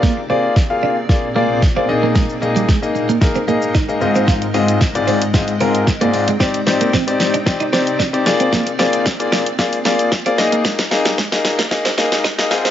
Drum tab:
HH |----------------|----------------|-xox-xox-xox-xox|-xox-xox-xox-xox|
SH |----------------|xxxxxxxxxxxxxxxx|xxxxxxxxxxxxxxxx|xxxxxxxxxxxxxxxx|
SD |o---o---o---o---|o---o---o---o---|o---o---o---o---|o-o-o-o-o-o-o-o-|
BD |o---o---o---o---|o---o---o---o---|o---o---o---o---|o---o---o---o---|

HH |-xox-xox-xox-xox|-xox-xox-xox-xox|
SH |xxxxxxxxxxxxxxxx|xxxxxxxxxxxxxxxx|
SD |o-o-o-o-o-o-o-o-|oooooooooooooooo|
BD |o---o---o---o---|o---o---o---o---|